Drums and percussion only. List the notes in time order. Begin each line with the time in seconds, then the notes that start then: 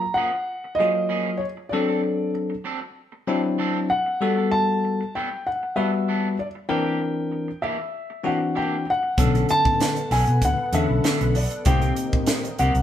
9.18 kick, closed hi-hat
9.35 closed hi-hat
9.49 closed hi-hat
9.65 kick
9.80 snare, closed hi-hat
9.96 closed hi-hat
10.11 snare, open hi-hat
10.27 closed hi-hat
10.42 kick, closed hi-hat
10.73 closed hi-hat
11.04 snare, closed hi-hat
11.21 closed hi-hat
11.35 open hi-hat
11.50 closed hi-hat
11.65 kick, closed hi-hat
11.82 closed hi-hat
11.96 closed hi-hat
12.13 kick
12.27 snare, closed hi-hat
12.45 closed hi-hat
12.59 closed hi-hat
12.75 closed hi-hat